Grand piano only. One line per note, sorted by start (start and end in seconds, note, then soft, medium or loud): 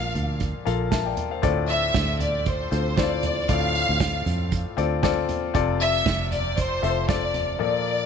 0.00 0.11 A#2 medium
0.00 0.11 F3 medium
0.00 0.13 A#3 medium
0.00 0.13 F4 medium
0.00 0.13 A4 medium
0.00 0.13 D5 medium
0.65 0.86 A#3 medium
0.65 0.86 F4 medium
0.65 0.86 A4 medium
0.65 0.86 F5 medium
0.91 1.06 E5 soft
0.91 1.05 A5 medium
1.05 1.31 D5 medium
1.05 1.30 G5 medium
1.31 1.56 C5 soft
1.31 1.56 F5 medium
1.42 2.16 A2 medium
1.42 2.18 C4 medium
1.42 2.19 F4 medium
1.42 2.19 A4 medium
1.42 2.19 D5 medium
2.71 2.91 C4 medium
2.71 2.91 F4 medium
2.71 2.92 A4 medium
2.71 2.92 C5 medium
2.97 3.36 C4 medium
2.97 3.04 E4 soft
2.97 3.37 A4 medium
2.97 3.37 C5 medium
3.03 3.40 F4 medium
3.49 4.22 A2 medium
3.49 4.24 C4 medium
3.49 4.25 F4 medium
3.49 4.25 A4 medium
3.49 4.25 D5 medium
4.77 4.97 C4 medium
4.77 4.97 F4 medium
4.77 4.97 A4 medium
4.77 4.97 D5 medium
5.03 5.42 C4 medium
5.03 5.42 F4 medium
5.03 5.42 A4 medium
5.03 5.43 D5 medium
5.54 6.27 C3 medium
5.54 6.30 C4 medium
5.54 6.30 F4 medium
5.54 6.30 A4 medium
5.54 6.30 D5 medium
6.82 7.02 C4 medium
6.82 7.02 F4 medium
6.82 7.02 A4 medium
6.82 7.03 E5 medium
7.08 7.47 C4 medium
7.08 7.48 F4 medium
7.08 7.48 A4 medium
7.08 7.48 D5 medium
7.59 8.06 A#2 medium
7.59 8.06 F3 medium
7.59 8.06 A#3 medium
7.59 8.06 F4 medium
7.59 8.06 A4 medium
7.59 8.06 D5 medium